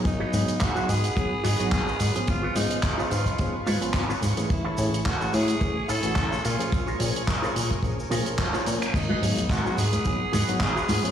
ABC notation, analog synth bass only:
X:1
M:4/4
L:1/16
Q:"Swing 16ths" 1/4=108
K:G#dor
V:1 name="Analog synth bass" clef=bass
G,,, z G,, G,,, G,,, z G,, z G,,, z G,, G,,, G,,, z G,, z | G,,, z G,, G,,, G,,, z G,, z G,,, z G,, G,,, G,,, z G,, z | =A,,, z =A,, A,,, A,,, z A,, z A,,, z A,, A,,, A,,, z ^A,, z | A,,, z A,, A,,, A,,, z A,, z A,,, z A,, A,,, A,,, z A,, z |
G,,, z G,, G,,, G,,, z G,, z G,,, z G,, G,,, G,,, z G,, z |]